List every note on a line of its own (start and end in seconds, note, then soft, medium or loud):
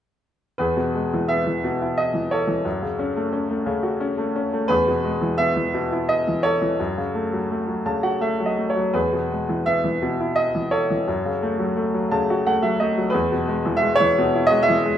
0.58 2.62 E2 soft
0.58 1.61 G#4 soft
0.58 1.32 B4 medium
0.77 1.62 B2 soft
0.95 2.28 G#3 soft
1.14 1.45 E3 soft
1.28 2.62 B3 soft
1.28 1.94 E5 medium
1.46 2.12 E3 soft
1.64 2.62 B2 soft
1.82 2.63 E4 soft
1.98 2.33 D#5 medium
2.14 2.46 E3 soft
2.31 3.64 A4 soft
2.31 3.63 C#5 medium
2.47 2.64 E3 soft
2.65 4.66 F#2 soft
2.82 3.65 C#3 soft
2.99 3.31 C#4 soft
3.16 3.48 A3 soft
3.33 3.99 C#4 soft
3.50 4.16 A3 soft
3.66 4.66 C#3 medium
3.83 4.67 F#4 soft
4.00 4.34 C#4 soft
4.18 4.52 A3 soft
4.36 4.69 C#4 soft
4.53 4.70 A3 soft
4.68 6.74 E2 medium
4.68 5.70 G#4 medium
4.68 5.40 B4 medium
4.87 5.73 B2 soft
5.04 6.40 G#3 soft
5.21 5.55 E3 soft
5.38 6.75 B3 soft
5.38 6.10 E5 medium
5.56 6.26 E3 soft
5.74 6.76 B2 soft
5.92 6.77 E4 soft
6.09 6.45 D#5 medium
6.28 6.60 E3 soft
6.43 7.81 A4 soft
6.43 7.80 C#5 medium
6.62 6.78 E3 soft
6.80 8.92 F#2 soft
6.98 7.84 C#3 soft
7.15 7.49 A3 soft
7.33 7.66 F#3 soft
7.51 8.19 A3 soft
7.68 8.38 F#3 soft
7.86 8.92 C#3 soft
7.86 8.02 A5 soft
8.03 8.93 F#4 soft
8.03 8.20 F#5 soft
8.21 8.56 A3 soft
8.21 8.44 E5 soft
8.40 8.75 F#3 soft
8.46 8.69 D#5 soft
8.58 8.94 A3 soft
8.70 8.93 C#5 soft
8.76 8.94 F#3 soft
8.94 11.03 E2 soft
8.94 9.98 G#4 soft
8.94 9.62 B4 medium
9.12 10.01 B2 soft
9.32 10.69 G#3 soft
9.49 9.83 E3 soft
9.66 11.03 B3 soft
9.66 10.39 E5 medium
9.84 10.53 E3 soft
10.02 11.04 B2 soft
10.20 11.05 E4 soft
10.36 10.73 D#5 medium
10.55 10.89 E3 soft
10.71 12.07 A4 soft
10.71 12.07 C#5 medium
10.90 11.07 E3 soft
11.08 13.10 F#2 soft
11.25 12.10 C#3 soft
11.42 11.75 A3 soft
11.59 11.93 F#3 soft
11.76 12.45 A3 soft
11.94 12.61 F#3 soft
12.11 13.10 C#3 medium
12.11 12.43 A5 medium
12.30 13.12 F#4 soft
12.46 12.79 A3 soft
12.46 12.62 F#5 medium
12.62 12.96 F#3 soft
12.62 12.78 E5 medium
12.80 13.13 A3 soft
12.80 13.11 D#5 medium
12.98 13.13 F#3 soft
13.10 14.10 G#4 medium
13.10 13.81 B4 medium
13.14 14.98 E2 medium
13.32 14.17 B2 soft
13.48 13.81 G#3 soft
13.66 13.99 E3 soft
13.77 13.94 E5 medium
13.82 14.50 G#3 soft
13.96 14.43 C#5 medium
14.00 14.67 E3 soft
14.18 14.98 B2 medium
14.35 14.98 E4 soft
14.47 14.65 D#5 medium
14.51 14.84 G#3 soft
14.63 14.98 E5 medium
14.69 14.98 E3 soft
14.86 14.98 G#3 soft